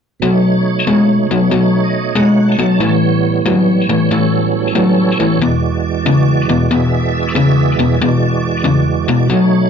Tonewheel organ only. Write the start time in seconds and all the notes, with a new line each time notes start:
0.20 B2 F#3 A3
0.24 D#4 C#5
1.84 D#5
2.16 F#5
2.49 A5
2.79 A2 E3 B3
2.83 G3 C#5
4.09 F#3 C#4 A4 C#5
5.38 E2 E3 G#3
5.43 F#4 D5
6.69 G#3 B3 G#4 E5
7.99 E2 E3 G#3 F#4 D5
9.26 B2 F#3 A3 D#4
9.31 C#5